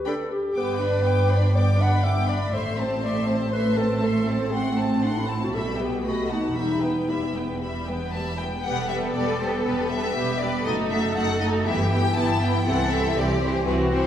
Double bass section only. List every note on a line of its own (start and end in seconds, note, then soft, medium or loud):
0.54 2.49 G1 soft
2.53 5.49 A1 soft
5.53 6.55 B1 soft
6.56 8.41 E1 soft
8.66 9.10 E1 soft
9.16 9.60 E1 soft
9.68 10.11 E1 soft
10.17 10.61 E1 soft
10.67 11.10 F#1 soft
11.16 11.60 F#1 soft
11.67 12.11 G1 soft
12.16 12.60 G1 soft
12.67 13.10 C2 soft
13.16 13.60 C2 soft
13.67 14.07 C2 soft